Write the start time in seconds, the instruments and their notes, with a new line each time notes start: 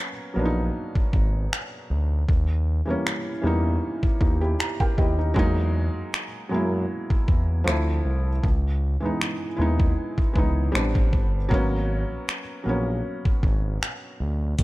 Already playing: felt piano F#3 A#3 B3 C#4
0.34 analog synth bass A#1, felt piano F#3 A#3 B3
0.39 felt piano D4
0.45 felt piano D#4
0.95 kick
1.13 analog synth bass G#1, kick
1.53 finger snap
1.90 analog synth bass D2
2.29 analog synth bass D#2, kick
2.85 analog synth bass E2, felt piano E3 G3 A#3
2.90 felt piano C#4
3.07 finger snap
3.42 analog synth bass E2, felt piano E3 G3 A#3
3.47 felt piano D#4
4.03 kick
4.21 analog synth bass D#2, felt piano D#4, kick
4.41 felt piano E4 G4
4.60 felt piano A#5, finger snap
4.80 felt piano G4 A#4 G5, kick
4.98 analog synth bass D#2, felt piano E4 G4 D#5, kick
5.19 felt piano D#4
5.34 analog synth bass E2, felt piano F#3 G#3 A#3, kick
5.39 felt piano D#4
5.95 analog synth bass F#2
6.14 finger snap
6.49 analog synth bass F#2, felt piano F#3 G#3 A#3
6.54 felt piano E4
7.10 kick
7.28 analog synth bass E2, kick
7.64 analog synth bass D2, felt piano F3 A3 C4, finger snap
7.69 felt piano E4
8.05 analog synth bass C2
8.44 analog synth bass C#2, kick
9.00 analog synth bass D#2, felt piano E3 G#3 B3
9.06 felt piano D#4
9.21 finger snap
9.56 analog synth bass D#2, felt piano G#3 B3 E4
9.61 felt piano D#4
9.80 kick
10.18 kick
10.33 analog synth bass C#2, felt piano E3 G#3 B3, kick
10.38 felt piano D#4
10.72 analog synth bass A1, felt piano G3 B3 C4, finger snap
10.77 felt piano D4
10.95 kick
11.13 analog synth bass G1, kick
11.49 analog synth bass G#1, felt piano F#3 A#3 B3, kick
11.54 felt piano C#4
12.11 analog synth bass A#1
12.29 finger snap
12.64 analog synth bass A#1, felt piano F#3 A#3 B3
12.69 felt piano C#4
13.25 kick
13.43 analog synth bass G#1, kick
13.83 finger snap
14.20 analog synth bass D2
14.59 analog synth bass D#2, kick, closed hi-hat